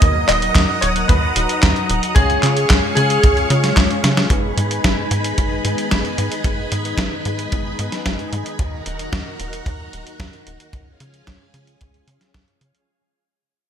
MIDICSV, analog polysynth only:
0, 0, Header, 1, 2, 480
1, 0, Start_track
1, 0, Tempo, 535714
1, 19, Time_signature, 4, 2, 24, 8
1, 12270, End_track
2, 0, Start_track
2, 0, Title_t, "Analog polysynth"
2, 0, Program_c, 0, 90
2, 18, Note_on_c, 0, 58, 68
2, 18, Note_on_c, 0, 63, 70
2, 18, Note_on_c, 0, 70, 82
2, 19, Note_on_c, 0, 54, 76
2, 1190, Note_off_c, 0, 54, 0
2, 1190, Note_off_c, 0, 58, 0
2, 1190, Note_off_c, 0, 63, 0
2, 1190, Note_off_c, 0, 70, 0
2, 1218, Note_on_c, 0, 54, 95
2, 1218, Note_on_c, 0, 63, 86
2, 1218, Note_on_c, 0, 82, 105
2, 1909, Note_off_c, 0, 54, 0
2, 1909, Note_off_c, 0, 63, 0
2, 1910, Note_off_c, 0, 82, 0
2, 1938, Note_on_c, 0, 56, 74
2, 1938, Note_on_c, 0, 61, 70
2, 1938, Note_on_c, 0, 65, 71
2, 1938, Note_on_c, 0, 73, 84
2, 3109, Note_off_c, 0, 56, 0
2, 3109, Note_off_c, 0, 61, 0
2, 3109, Note_off_c, 0, 65, 0
2, 3109, Note_off_c, 0, 73, 0
2, 3138, Note_on_c, 0, 56, 94
2, 3138, Note_on_c, 0, 61, 86
2, 3138, Note_on_c, 0, 65, 89
2, 3138, Note_on_c, 0, 73, 104
2, 3829, Note_off_c, 0, 56, 0
2, 3829, Note_off_c, 0, 61, 0
2, 3829, Note_off_c, 0, 65, 0
2, 3829, Note_off_c, 0, 73, 0
2, 3858, Note_on_c, 0, 56, 76
2, 3858, Note_on_c, 0, 59, 68
2, 3858, Note_on_c, 0, 71, 82
2, 5030, Note_off_c, 0, 56, 0
2, 5030, Note_off_c, 0, 59, 0
2, 5030, Note_off_c, 0, 71, 0
2, 5059, Note_on_c, 0, 56, 90
2, 5059, Note_on_c, 0, 59, 84
2, 5059, Note_on_c, 0, 63, 84
2, 5059, Note_on_c, 0, 71, 104
2, 5750, Note_off_c, 0, 56, 0
2, 5750, Note_off_c, 0, 59, 0
2, 5750, Note_off_c, 0, 63, 0
2, 5750, Note_off_c, 0, 71, 0
2, 5779, Note_on_c, 0, 56, 74
2, 5779, Note_on_c, 0, 59, 65
2, 5779, Note_on_c, 0, 63, 69
2, 5779, Note_on_c, 0, 71, 84
2, 6950, Note_off_c, 0, 56, 0
2, 6950, Note_off_c, 0, 59, 0
2, 6950, Note_off_c, 0, 63, 0
2, 6950, Note_off_c, 0, 71, 0
2, 6979, Note_on_c, 0, 56, 92
2, 6979, Note_on_c, 0, 59, 83
2, 6979, Note_on_c, 0, 63, 84
2, 6979, Note_on_c, 0, 71, 102
2, 7670, Note_off_c, 0, 56, 0
2, 7670, Note_off_c, 0, 59, 0
2, 7670, Note_off_c, 0, 63, 0
2, 7670, Note_off_c, 0, 71, 0
2, 12270, End_track
0, 0, End_of_file